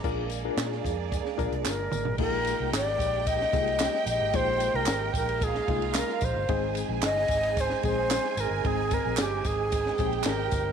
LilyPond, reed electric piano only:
\new Staff \with { instrumentName = "Reed electric piano" } { \time 4/4 \key bes \mixolydian \tempo 4 = 112 <d' f' aes' bes'>8 r16 <d' f' aes' bes'>4 r8. <d' f' aes' bes'>8. r8. | <aes bes ees' f' aes'>4 r4. <aes bes ees' f' aes'>8. r8. | <aes bes ees' f' aes'>4 r4. <aes bes ees' f' aes'>8. r8. | <aes c' ees' aes'>4 r4. <aes c' ees' aes'>8. r8. |
<aes c' ees' aes'>4 r4. <aes c' ees' g' aes'>8. r8. | }